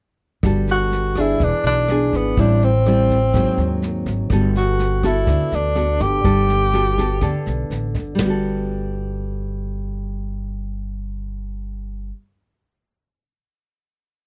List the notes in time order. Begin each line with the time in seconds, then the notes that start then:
0.43 G1 G3 B3 F#4 A4, kick, cross-stick, snare
0.67 F#4, snare
0.92 snare
1.16 B3 D4 G#4, kick, cross-stick, snare
1.20 E4
1.40 E1 E3 D4, kick, snare
1.64 B1 D4, snare
1.88 B3 D4 G#4, cross-stick, snare
2.13 G#1 B3, kick, snare
2.37 A1 A2 G3 C4 D4 E4, kick, snare
2.62 C4, snare
2.86 G3 C4 E4, cross-stick, snare
3.10 kick, snare
3.33 G#1 G#2 F#3 A#3 C4, kick, cross-stick, snare
3.58 D#2, snare
3.82 snare
4.06 G#1, kick, snare
4.30 G1 G3 B3 F#4 A4, kick, cross-stick, snare
4.55 F#4, snare
4.79 snare
5.03 B3 E4 F#4 A4, kick, cross-stick, snare
5.27 D2 D3, kick, snare
5.52 D2 D4, snare
5.75 B3 F#4 A4, cross-stick, snare
5.99 G1 G4, kick, snare
6.24 G1 G3 B3 A4, kick, snare
6.49 snare
6.73 B3 F#4 A4, cross-stick, snare
6.98 B3 F#4 A4, kick, snare
7.21 D2 D3 B3 A4, kick, cross-stick, snare
7.46 B1, snare
7.70 A1, snare
7.95 G1, kick, snare
8.15 G3, snare, floor tom, ride bell
8.19 G1 B3
8.25 F#4
8.30 A4